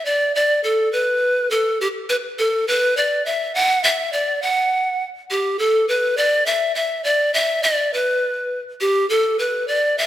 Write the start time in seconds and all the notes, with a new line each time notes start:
0.05 D5
0.35 D5
0.64 A4
0.93 B4
1.51 A4
1.81 G4
2.09 B4
2.39 A4
2.68 B4
2.97 D5
3.26 E5
3.55 F#5
3.84 E5
4.13 D5
4.42 F#5
5.31 G4
5.59 A4
5.88 B4
6.17 D5
6.46 E5
6.75 E5
7.04 D5
7.34 E5
7.63 D5
7.93 B4
8.81 G4
9.10 A4
9.39 B4
9.68 D5
9.98 E5